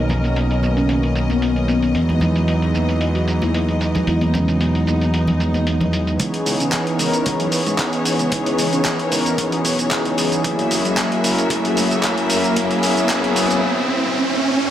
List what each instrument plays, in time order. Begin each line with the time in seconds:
Already playing: fingered electric bass B1, analog synth pad D#3 F#3 A#3 B3 C#4, string section A#4 D#5
0.09 closed hi-hat, low conga, shaker
0.24 closed hi-hat, shaker
0.36 closed hi-hat, shaker
0.51 closed hi-hat
0.63 high conga, shaker
0.76 soft synth lead C#4, closed hi-hat, shaker
0.89 closed hi-hat, shaker
1.03 closed hi-hat
1.16 closed hi-hat, shaker
1.29 soft synth lead B3, closed hi-hat, high conga, shaker
1.42 closed hi-hat, shaker
1.56 closed hi-hat
1.68 soft synth lead B3, closed hi-hat, shaker
1.82 closed hi-hat, shaker
1.94 fingered electric bass E2, analog synth pad E3 F#3 G#3 B3 D#4, string section E3 G#3, closed hi-hat, shaker
2.09 closed hi-hat, high conga
2.21 closed hi-hat, low conga, shaker
2.36 closed hi-hat, shaker
2.48 closed hi-hat, shaker
2.62 closed hi-hat
2.75 high conga, shaker
2.89 closed hi-hat, shaker
3.01 closed hi-hat, shaker
3.15 soft synth lead F#4, closed hi-hat
3.28 closed hi-hat, shaker
3.42 soft synth lead E4, closed hi-hat, high conga, shaker
3.54 closed hi-hat, shaker
3.69 closed hi-hat
3.81 closed hi-hat, shaker
3.95 closed hi-hat, low conga, shaker
4.07 fingered electric bass E2, string section D#4, soft synth lead E4, closed hi-hat, shaker
4.21 closed hi-hat, high conga
4.34 soft synth lead C#4, closed hi-hat, low conga, shaker
4.48 closed hi-hat, shaker
4.61 soft synth lead B3, closed hi-hat, shaker
4.75 closed hi-hat
4.86 soft synth lead B3, closed hi-hat, high conga, shaker
5.01 soft synth lead B3, closed hi-hat, shaker
5.14 closed hi-hat, shaker
5.28 closed hi-hat, low conga
5.40 closed hi-hat, shaker
5.54 closed hi-hat, high conga, shaker
5.67 closed hi-hat, shaker
5.80 closed hi-hat, low conga
5.93 closed hi-hat, shaker
6.07 closed hi-hat, shaker
6.19 fingered electric bass C#2, analog synth pad E3 B3 C#4 D#4 G#4, string section E3 B3 C#5, kick, closed hi-hat, riser, shaker
6.34 closed hi-hat
6.46 fingered electric bass C#2, open hi-hat, shaker
6.60 fingered electric bass C#3, analog synth pad E3 B3 C#4 D#4 G#4, closed hi-hat, shaker
6.72 kick, clap, closed hi-hat, shaker
6.86 analog synth pad E3 B3 C#4 D#4 A#4, closed hi-hat
6.99 fingered electric bass C#2, open hi-hat, shaker
7.13 closed hi-hat, shaker
7.25 fingered electric bass C#2, analog synth pad E3 B3 C#4 D#4 G#4, kick, closed hi-hat, shaker
7.40 fingered electric bass F#2, closed hi-hat
7.52 open hi-hat, shaker
7.66 fingered electric bass G#2, analog synth pad E3 B3 C#4 D#4 G#4, closed hi-hat, shaker
7.78 kick, clap, closed hi-hat, shaker
7.93 analog synth pad E3 B3 C#4 D#4 G#4, closed hi-hat
8.05 open hi-hat, shaker
8.19 fingered electric bass C#2, closed hi-hat, shaker
8.32 analog synth pad E3 B3 C#4 D#4 G#4, kick, closed hi-hat, shaker
8.46 closed hi-hat
8.59 fingered electric bass C#2, open hi-hat, shaker
8.73 fingered electric bass C#3, analog synth pad E3 B3 C#4 D#4 G#4, closed hi-hat, shaker
8.85 kick, clap, closed hi-hat, shaker
8.99 analog synth pad E3 B3 C#4 D#4 A#4, closed hi-hat
9.11 fingered electric bass C#2, open hi-hat, shaker
9.26 closed hi-hat, shaker
9.38 fingered electric bass E2, analog synth pad E3 B3 C#4 D#4 G#4, kick, closed hi-hat, shaker
9.52 closed hi-hat
9.65 fingered electric bass B1, open hi-hat, shaker
9.78 analog synth pad E3 B3 C#4 D#4 G#4, closed hi-hat, shaker
9.91 kick, clap, closed hi-hat, shaker
10.05 fingered electric bass C#2, analog synth pad E3 B3 C#4 D#4 G#4, closed hi-hat
10.18 fingered electric bass C#2, open hi-hat, shaker
10.32 closed hi-hat, shaker
10.44 fingered electric bass F#1, analog synth pad F#3 A#3 C#4 E4 G#4, string section A#3 F#4 E5, kick, closed hi-hat, shaker
10.59 closed hi-hat
10.71 fingered electric bass F#1, open hi-hat, shaker
10.85 fingered electric bass F#2, analog synth pad F#3 A#3 C#4 E4 G#4, closed hi-hat, shaker
10.97 kick, clap, closed hi-hat, shaker
11.11 analog synth pad F#3 A#3 C#4 E4 A#4, closed hi-hat
11.24 fingered electric bass F#1, open hi-hat, shaker
11.38 closed hi-hat, shaker
11.50 fingered electric bass F#1, analog synth pad F#3 A#3 C#4 E4 G#4, kick, closed hi-hat, shaker
11.64 fingered electric bass A#1, closed hi-hat
11.77 open hi-hat, shaker
11.91 fingered electric bass C#2, analog synth pad F#3 A#3 C#4 E4 G#4, closed hi-hat, shaker
12.03 kick, clap, closed hi-hat, shaker
12.17 analog synth pad F#3 A#3 C#4 E4 A#4, closed hi-hat
12.30 open hi-hat, shaker
12.44 fingered electric bass F#1, closed hi-hat, shaker
12.56 analog synth pad F#3 A#3 C#4 E4 G#4, string section E4, kick, closed hi-hat, shaker
12.71 closed hi-hat
12.83 fingered electric bass F#1, open hi-hat, shaker
12.97 fingered electric bass F#2, analog synth pad F#3 A#3 C#4 E4 G#4, closed hi-hat, shaker
13.09 analog synth pad F#3 A#3 C#4 E4 G#4, kick, clap, closed hi-hat, shaker
13.24 closed hi-hat
13.36 fingered electric bass F#1, open hi-hat, shaker
13.50 analog synth pad F#3 A#3 C#4 E4 G#4, closed hi-hat, shaker